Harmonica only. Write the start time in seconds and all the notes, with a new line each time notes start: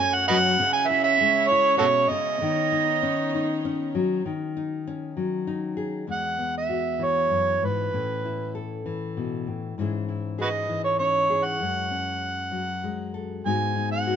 0.00 G#5
0.14 F#5
0.28 B4 D#5 F#5
0.73 G#5
0.88 E5
1.04 E5
1.48 C#5
1.78 F#4 A4 C#5
2.08 D#5
6.11 F#5
6.58 E5
7.04 C#5
7.65 B4
10.41 F#4 B4 D#5
10.84 C#5
10.99 C#5
11.45 F#5
13.46 G#5
13.92 F#5